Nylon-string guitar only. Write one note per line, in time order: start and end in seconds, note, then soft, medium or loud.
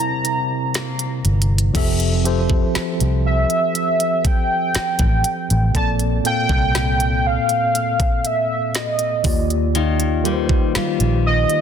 0.00 1.75 C3 medium
0.00 1.85 G3 medium
0.00 0.74 A#3 medium
0.00 2.35 E4 medium
0.75 1.85 A#3 medium
9.75 11.61 D#3 loud
9.75 10.75 F4 medium
10.25 10.75 G3 medium
10.75 11.61 G3 medium
10.75 11.61 F4 medium